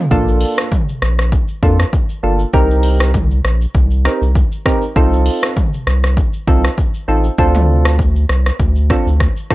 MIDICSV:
0, 0, Header, 1, 4, 480
1, 0, Start_track
1, 0, Key_signature, -2, "major"
1, 0, Tempo, 606061
1, 89, Time_signature, 4, 2, 24, 8
1, 7561, End_track
2, 0, Start_track
2, 0, Title_t, "Synth keys"
2, 0, Program_c, 0, 88
2, 86, Note_on_c, 0, 58, 95
2, 88, Note_on_c, 0, 62, 88
2, 89, Note_on_c, 0, 65, 86
2, 91, Note_on_c, 0, 69, 108
2, 533, Note_off_c, 0, 58, 0
2, 534, Note_off_c, 0, 62, 0
2, 534, Note_off_c, 0, 65, 0
2, 535, Note_off_c, 0, 69, 0
2, 1288, Note_on_c, 0, 58, 81
2, 1290, Note_on_c, 0, 62, 75
2, 1291, Note_on_c, 0, 65, 74
2, 1292, Note_on_c, 0, 69, 86
2, 1432, Note_off_c, 0, 58, 0
2, 1433, Note_off_c, 0, 62, 0
2, 1434, Note_off_c, 0, 65, 0
2, 1434, Note_off_c, 0, 69, 0
2, 1767, Note_on_c, 0, 58, 80
2, 1769, Note_on_c, 0, 62, 70
2, 1770, Note_on_c, 0, 65, 73
2, 1771, Note_on_c, 0, 69, 83
2, 1911, Note_off_c, 0, 58, 0
2, 1912, Note_off_c, 0, 62, 0
2, 1913, Note_off_c, 0, 65, 0
2, 1914, Note_off_c, 0, 69, 0
2, 2007, Note_on_c, 0, 60, 96
2, 2009, Note_on_c, 0, 63, 90
2, 2010, Note_on_c, 0, 67, 88
2, 2012, Note_on_c, 0, 70, 103
2, 2453, Note_off_c, 0, 60, 0
2, 2454, Note_off_c, 0, 63, 0
2, 2455, Note_off_c, 0, 67, 0
2, 2456, Note_off_c, 0, 70, 0
2, 3207, Note_on_c, 0, 60, 78
2, 3208, Note_on_c, 0, 63, 72
2, 3210, Note_on_c, 0, 67, 71
2, 3211, Note_on_c, 0, 70, 85
2, 3351, Note_off_c, 0, 60, 0
2, 3352, Note_off_c, 0, 63, 0
2, 3353, Note_off_c, 0, 67, 0
2, 3354, Note_off_c, 0, 70, 0
2, 3687, Note_on_c, 0, 60, 81
2, 3689, Note_on_c, 0, 63, 73
2, 3690, Note_on_c, 0, 67, 69
2, 3692, Note_on_c, 0, 70, 90
2, 3832, Note_off_c, 0, 60, 0
2, 3833, Note_off_c, 0, 63, 0
2, 3833, Note_off_c, 0, 67, 0
2, 3834, Note_off_c, 0, 70, 0
2, 3927, Note_on_c, 0, 60, 97
2, 3928, Note_on_c, 0, 63, 88
2, 3930, Note_on_c, 0, 65, 86
2, 3932, Note_on_c, 0, 69, 111
2, 4373, Note_off_c, 0, 60, 0
2, 4374, Note_off_c, 0, 63, 0
2, 4375, Note_off_c, 0, 65, 0
2, 4376, Note_off_c, 0, 69, 0
2, 5127, Note_on_c, 0, 60, 80
2, 5129, Note_on_c, 0, 63, 72
2, 5131, Note_on_c, 0, 65, 70
2, 5132, Note_on_c, 0, 69, 86
2, 5272, Note_off_c, 0, 60, 0
2, 5273, Note_off_c, 0, 63, 0
2, 5273, Note_off_c, 0, 65, 0
2, 5274, Note_off_c, 0, 69, 0
2, 5607, Note_on_c, 0, 60, 82
2, 5608, Note_on_c, 0, 63, 71
2, 5609, Note_on_c, 0, 65, 73
2, 5611, Note_on_c, 0, 69, 89
2, 5751, Note_off_c, 0, 60, 0
2, 5752, Note_off_c, 0, 63, 0
2, 5753, Note_off_c, 0, 65, 0
2, 5754, Note_off_c, 0, 69, 0
2, 5847, Note_on_c, 0, 60, 100
2, 5849, Note_on_c, 0, 62, 90
2, 5850, Note_on_c, 0, 65, 90
2, 5852, Note_on_c, 0, 69, 108
2, 6293, Note_off_c, 0, 60, 0
2, 6294, Note_off_c, 0, 62, 0
2, 6295, Note_off_c, 0, 65, 0
2, 6296, Note_off_c, 0, 69, 0
2, 7048, Note_on_c, 0, 60, 76
2, 7050, Note_on_c, 0, 62, 73
2, 7051, Note_on_c, 0, 65, 72
2, 7053, Note_on_c, 0, 69, 85
2, 7192, Note_off_c, 0, 60, 0
2, 7193, Note_off_c, 0, 62, 0
2, 7194, Note_off_c, 0, 65, 0
2, 7194, Note_off_c, 0, 69, 0
2, 7528, Note_on_c, 0, 60, 79
2, 7529, Note_on_c, 0, 62, 72
2, 7531, Note_on_c, 0, 65, 72
2, 7533, Note_on_c, 0, 69, 84
2, 7561, Note_off_c, 0, 60, 0
2, 7561, Note_off_c, 0, 62, 0
2, 7561, Note_off_c, 0, 65, 0
2, 7561, Note_off_c, 0, 69, 0
2, 7561, End_track
3, 0, Start_track
3, 0, Title_t, "Analog synth bass"
3, 0, Program_c, 1, 38
3, 89, Note_on_c, 1, 34, 108
3, 353, Note_off_c, 1, 34, 0
3, 809, Note_on_c, 1, 34, 92
3, 1073, Note_off_c, 1, 34, 0
3, 1288, Note_on_c, 1, 41, 108
3, 1459, Note_off_c, 1, 41, 0
3, 1769, Note_on_c, 1, 31, 94
3, 1939, Note_off_c, 1, 31, 0
3, 2009, Note_on_c, 1, 36, 114
3, 2697, Note_off_c, 1, 36, 0
3, 2729, Note_on_c, 1, 34, 98
3, 2899, Note_off_c, 1, 34, 0
3, 2967, Note_on_c, 1, 36, 105
3, 3232, Note_off_c, 1, 36, 0
3, 3340, Note_on_c, 1, 36, 93
3, 3511, Note_off_c, 1, 36, 0
3, 3929, Note_on_c, 1, 36, 112
3, 4193, Note_off_c, 1, 36, 0
3, 4648, Note_on_c, 1, 36, 94
3, 4913, Note_off_c, 1, 36, 0
3, 5128, Note_on_c, 1, 36, 98
3, 5299, Note_off_c, 1, 36, 0
3, 5609, Note_on_c, 1, 33, 92
3, 5779, Note_off_c, 1, 33, 0
3, 5849, Note_on_c, 1, 38, 115
3, 6537, Note_off_c, 1, 38, 0
3, 6570, Note_on_c, 1, 36, 93
3, 6740, Note_off_c, 1, 36, 0
3, 6808, Note_on_c, 1, 38, 99
3, 7073, Note_off_c, 1, 38, 0
3, 7182, Note_on_c, 1, 38, 101
3, 7352, Note_off_c, 1, 38, 0
3, 7561, End_track
4, 0, Start_track
4, 0, Title_t, "Drums"
4, 88, Note_on_c, 9, 82, 75
4, 89, Note_on_c, 9, 36, 115
4, 167, Note_off_c, 9, 82, 0
4, 168, Note_off_c, 9, 36, 0
4, 223, Note_on_c, 9, 82, 58
4, 302, Note_off_c, 9, 82, 0
4, 321, Note_on_c, 9, 46, 52
4, 401, Note_off_c, 9, 46, 0
4, 459, Note_on_c, 9, 37, 120
4, 464, Note_on_c, 9, 82, 61
4, 538, Note_off_c, 9, 37, 0
4, 543, Note_off_c, 9, 82, 0
4, 568, Note_on_c, 9, 36, 96
4, 570, Note_on_c, 9, 45, 70
4, 574, Note_on_c, 9, 82, 82
4, 647, Note_off_c, 9, 36, 0
4, 649, Note_off_c, 9, 45, 0
4, 653, Note_off_c, 9, 82, 0
4, 702, Note_on_c, 9, 82, 56
4, 781, Note_off_c, 9, 82, 0
4, 809, Note_on_c, 9, 37, 92
4, 888, Note_off_c, 9, 37, 0
4, 942, Note_on_c, 9, 37, 89
4, 942, Note_on_c, 9, 82, 57
4, 1021, Note_off_c, 9, 37, 0
4, 1021, Note_off_c, 9, 82, 0
4, 1047, Note_on_c, 9, 36, 94
4, 1047, Note_on_c, 9, 82, 73
4, 1126, Note_off_c, 9, 36, 0
4, 1126, Note_off_c, 9, 82, 0
4, 1174, Note_on_c, 9, 82, 53
4, 1253, Note_off_c, 9, 82, 0
4, 1288, Note_on_c, 9, 36, 96
4, 1293, Note_on_c, 9, 82, 50
4, 1367, Note_off_c, 9, 36, 0
4, 1373, Note_off_c, 9, 82, 0
4, 1422, Note_on_c, 9, 37, 92
4, 1426, Note_on_c, 9, 82, 56
4, 1502, Note_off_c, 9, 37, 0
4, 1505, Note_off_c, 9, 82, 0
4, 1529, Note_on_c, 9, 36, 100
4, 1532, Note_on_c, 9, 82, 73
4, 1608, Note_off_c, 9, 36, 0
4, 1611, Note_off_c, 9, 82, 0
4, 1658, Note_on_c, 9, 82, 63
4, 1737, Note_off_c, 9, 82, 0
4, 1895, Note_on_c, 9, 82, 55
4, 1975, Note_off_c, 9, 82, 0
4, 2008, Note_on_c, 9, 82, 74
4, 2009, Note_on_c, 9, 36, 119
4, 2087, Note_off_c, 9, 82, 0
4, 2088, Note_off_c, 9, 36, 0
4, 2144, Note_on_c, 9, 82, 61
4, 2223, Note_off_c, 9, 82, 0
4, 2242, Note_on_c, 9, 46, 52
4, 2321, Note_off_c, 9, 46, 0
4, 2379, Note_on_c, 9, 37, 118
4, 2383, Note_on_c, 9, 82, 59
4, 2458, Note_off_c, 9, 37, 0
4, 2463, Note_off_c, 9, 82, 0
4, 2488, Note_on_c, 9, 36, 101
4, 2490, Note_on_c, 9, 45, 69
4, 2495, Note_on_c, 9, 82, 87
4, 2568, Note_off_c, 9, 36, 0
4, 2569, Note_off_c, 9, 45, 0
4, 2574, Note_off_c, 9, 82, 0
4, 2622, Note_on_c, 9, 82, 52
4, 2701, Note_off_c, 9, 82, 0
4, 2729, Note_on_c, 9, 37, 90
4, 2809, Note_off_c, 9, 37, 0
4, 2863, Note_on_c, 9, 82, 53
4, 2942, Note_off_c, 9, 82, 0
4, 2967, Note_on_c, 9, 36, 98
4, 2968, Note_on_c, 9, 82, 67
4, 3047, Note_off_c, 9, 36, 0
4, 3047, Note_off_c, 9, 82, 0
4, 3095, Note_on_c, 9, 82, 53
4, 3174, Note_off_c, 9, 82, 0
4, 3209, Note_on_c, 9, 37, 96
4, 3214, Note_on_c, 9, 82, 50
4, 3288, Note_off_c, 9, 37, 0
4, 3293, Note_off_c, 9, 82, 0
4, 3347, Note_on_c, 9, 82, 58
4, 3426, Note_off_c, 9, 82, 0
4, 3449, Note_on_c, 9, 36, 92
4, 3453, Note_on_c, 9, 82, 72
4, 3528, Note_off_c, 9, 36, 0
4, 3532, Note_off_c, 9, 82, 0
4, 3579, Note_on_c, 9, 82, 64
4, 3659, Note_off_c, 9, 82, 0
4, 3688, Note_on_c, 9, 36, 95
4, 3689, Note_on_c, 9, 37, 97
4, 3768, Note_off_c, 9, 36, 0
4, 3768, Note_off_c, 9, 37, 0
4, 3817, Note_on_c, 9, 82, 56
4, 3896, Note_off_c, 9, 82, 0
4, 3929, Note_on_c, 9, 36, 119
4, 3929, Note_on_c, 9, 82, 75
4, 4008, Note_off_c, 9, 36, 0
4, 4008, Note_off_c, 9, 82, 0
4, 4065, Note_on_c, 9, 82, 59
4, 4144, Note_off_c, 9, 82, 0
4, 4164, Note_on_c, 9, 46, 53
4, 4243, Note_off_c, 9, 46, 0
4, 4300, Note_on_c, 9, 37, 118
4, 4305, Note_on_c, 9, 82, 58
4, 4380, Note_off_c, 9, 37, 0
4, 4384, Note_off_c, 9, 82, 0
4, 4409, Note_on_c, 9, 36, 97
4, 4411, Note_on_c, 9, 45, 71
4, 4416, Note_on_c, 9, 82, 81
4, 4488, Note_off_c, 9, 36, 0
4, 4491, Note_off_c, 9, 45, 0
4, 4495, Note_off_c, 9, 82, 0
4, 4543, Note_on_c, 9, 82, 53
4, 4622, Note_off_c, 9, 82, 0
4, 4650, Note_on_c, 9, 37, 93
4, 4729, Note_off_c, 9, 37, 0
4, 4782, Note_on_c, 9, 37, 86
4, 4782, Note_on_c, 9, 82, 53
4, 4862, Note_off_c, 9, 37, 0
4, 4862, Note_off_c, 9, 82, 0
4, 4888, Note_on_c, 9, 36, 96
4, 4888, Note_on_c, 9, 82, 68
4, 4967, Note_off_c, 9, 36, 0
4, 4967, Note_off_c, 9, 82, 0
4, 5015, Note_on_c, 9, 82, 54
4, 5095, Note_off_c, 9, 82, 0
4, 5129, Note_on_c, 9, 36, 101
4, 5134, Note_on_c, 9, 82, 49
4, 5208, Note_off_c, 9, 36, 0
4, 5213, Note_off_c, 9, 82, 0
4, 5263, Note_on_c, 9, 37, 99
4, 5267, Note_on_c, 9, 82, 55
4, 5342, Note_off_c, 9, 37, 0
4, 5346, Note_off_c, 9, 82, 0
4, 5369, Note_on_c, 9, 36, 97
4, 5372, Note_on_c, 9, 82, 74
4, 5448, Note_off_c, 9, 36, 0
4, 5451, Note_off_c, 9, 82, 0
4, 5499, Note_on_c, 9, 82, 64
4, 5578, Note_off_c, 9, 82, 0
4, 5735, Note_on_c, 9, 82, 54
4, 5815, Note_off_c, 9, 82, 0
4, 5847, Note_on_c, 9, 82, 74
4, 5849, Note_on_c, 9, 36, 118
4, 5927, Note_off_c, 9, 82, 0
4, 5928, Note_off_c, 9, 36, 0
4, 5978, Note_on_c, 9, 45, 95
4, 5983, Note_on_c, 9, 82, 60
4, 6057, Note_off_c, 9, 45, 0
4, 6062, Note_off_c, 9, 82, 0
4, 6220, Note_on_c, 9, 37, 123
4, 6224, Note_on_c, 9, 82, 59
4, 6299, Note_off_c, 9, 37, 0
4, 6303, Note_off_c, 9, 82, 0
4, 6328, Note_on_c, 9, 36, 101
4, 6334, Note_on_c, 9, 82, 82
4, 6408, Note_off_c, 9, 36, 0
4, 6413, Note_off_c, 9, 82, 0
4, 6461, Note_on_c, 9, 82, 56
4, 6540, Note_off_c, 9, 82, 0
4, 6569, Note_on_c, 9, 37, 87
4, 6648, Note_off_c, 9, 37, 0
4, 6703, Note_on_c, 9, 37, 89
4, 6703, Note_on_c, 9, 82, 56
4, 6782, Note_off_c, 9, 37, 0
4, 6782, Note_off_c, 9, 82, 0
4, 6808, Note_on_c, 9, 36, 96
4, 6808, Note_on_c, 9, 82, 67
4, 6887, Note_off_c, 9, 36, 0
4, 6887, Note_off_c, 9, 82, 0
4, 6936, Note_on_c, 9, 82, 53
4, 7015, Note_off_c, 9, 82, 0
4, 7049, Note_on_c, 9, 36, 100
4, 7050, Note_on_c, 9, 37, 90
4, 7055, Note_on_c, 9, 82, 49
4, 7128, Note_off_c, 9, 36, 0
4, 7129, Note_off_c, 9, 37, 0
4, 7134, Note_off_c, 9, 82, 0
4, 7187, Note_on_c, 9, 82, 56
4, 7266, Note_off_c, 9, 82, 0
4, 7289, Note_on_c, 9, 36, 98
4, 7289, Note_on_c, 9, 37, 93
4, 7292, Note_on_c, 9, 82, 71
4, 7368, Note_off_c, 9, 36, 0
4, 7368, Note_off_c, 9, 37, 0
4, 7371, Note_off_c, 9, 82, 0
4, 7419, Note_on_c, 9, 82, 64
4, 7498, Note_off_c, 9, 82, 0
4, 7528, Note_on_c, 9, 37, 93
4, 7529, Note_on_c, 9, 36, 92
4, 7531, Note_on_c, 9, 82, 52
4, 7561, Note_off_c, 9, 36, 0
4, 7561, Note_off_c, 9, 37, 0
4, 7561, Note_off_c, 9, 82, 0
4, 7561, End_track
0, 0, End_of_file